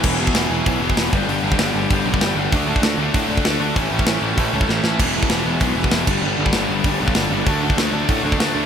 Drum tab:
CC |x---------------|----------------|----------------|----------------|
HH |----o---o---o---|o---o---o---o---|o---o---o---o---|o---o---o-------|
SD |----o-------o---|----o-------o---|----o-------o---|----o-------o-o-|
BD |o--o----o--o--o-|---o----o--o----|o--o----o--o----|o--o----o--o----|

CC |x-------------x-|----------------|----------------|
HH |o---o---o---o---|----o---o---o---|o---o---o---o---|
SD |----o-------o---|----o-------o---|----o-------o---|
BD |o--o----o--o--o-|---o----o--o----|o--o----o--o----|